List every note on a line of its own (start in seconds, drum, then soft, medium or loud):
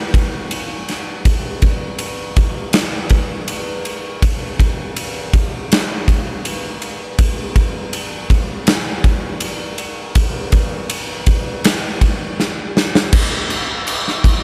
0.14 kick medium
0.14 ride medium
0.51 ride medium
0.89 snare soft
0.89 ride medium
1.25 kick loud
1.25 ride medium
1.62 kick medium
1.62 ride medium
1.99 ride medium
2.36 kick medium
2.36 ride medium
2.73 snare loud
2.73 ride loud
3.09 kick medium
3.09 ride medium
3.48 ride medium
3.85 ride medium
4.22 kick loud
4.22 ride medium
4.59 kick medium
4.59 ride medium
4.96 ride loud
5.33 kick medium
5.33 ride medium
5.72 snare loud
5.72 ride loud
6.08 kick medium
6.08 ride medium
6.45 ride medium
6.82 ride medium
7.19 kick loud
7.19 ride medium
7.56 kick medium
7.56 ride medium
7.93 ride medium
8.30 kick medium
8.30 ride medium
8.67 snare loud
8.67 ride medium
9.04 kick medium
9.04 ride medium
9.40 ride medium
9.78 ride medium
10.15 kick loud
10.15 ride loud
10.52 kick medium
10.52 ride medium
10.90 ride loud
11.26 kick medium
11.26 ride medium
11.64 snare loud
11.64 ride loud
12.01 kick medium
12.01 ride medium
12.40 snare medium
12.77 snare medium
12.95 snare medium
13.13 kick loud
13.13 crash loud
13.13 crash medium
13.50 crash medium
13.87 tambourine loud
13.87 crash medium
14.08 snare soft
14.24 kick medium
14.24 tambourine medium
14.24 crash medium